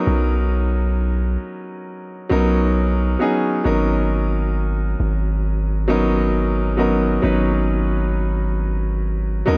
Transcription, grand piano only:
0.00 1.05 F#3 medium
0.00 1.06 B3 medium
0.00 1.06 C#4 medium
0.00 1.09 D#4 medium
0.00 1.07 A#4 loud
2.29 2.91 F#3 medium
2.29 2.92 B3 medium
2.29 2.92 C#4 medium
2.29 2.92 D#4 medium
2.29 2.93 A#4 loud
3.19 3.51 F#3 medium
3.19 3.51 B3 medium
3.19 3.51 C#4 medium
3.19 3.52 D#4 medium
3.19 3.52 G#4 medium
3.64 4.86 F#3 medium
3.64 4.86 B3 medium
3.64 4.86 C#4 medium
3.64 4.87 D#4 medium
3.64 4.87 A#4 loud
5.88 6.50 F#3 medium
5.88 6.50 B3 medium
5.88 6.50 C#4 medium
5.88 6.51 D#4 medium
5.88 6.51 A#4 medium
6.77 7.09 F#3 medium
6.77 7.09 B3 medium
6.77 7.10 C#4 medium
6.77 7.10 D#4 medium
6.77 7.10 A#4 medium
7.22 8.44 F#3 medium
7.22 8.44 B3 medium
7.22 8.45 C#4 medium
7.22 8.45 D#4 medium
7.22 8.45 B4 medium
9.46 9.57 F#3 medium
9.46 9.57 B3 medium
9.46 9.57 C#4 medium
9.46 9.57 D#4 medium
9.46 9.57 A#4 loud
9.46 9.57 D#5 medium

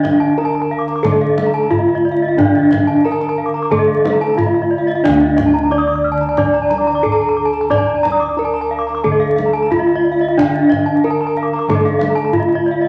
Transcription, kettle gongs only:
0.00 0.33 D3 soft
0.00 1.67 D4 medium
0.38 0.46 D#4 soft
1.04 3.00 D3 medium
1.72 1.80 D#4 soft
2.37 4.33 D4 medium
3.05 3.13 D#4 soft
3.71 5.67 D3 soft
4.36 4.44 D#4 soft
5.03 7.00 D4 medium
5.09 9.02 D2 medium
5.70 5.78 D#4 soft
7.03 7.11 D#4 soft
7.71 9.67 D5 medium
8.37 8.45 D#4 soft
9.05 11.00 D3 soft
9.72 9.80 D#4 soft
10.38 12.29 D4 medium
11.04 11.12 D#4 soft
11.68 12.88 D3 medium
12.33 12.41 D#4 soft

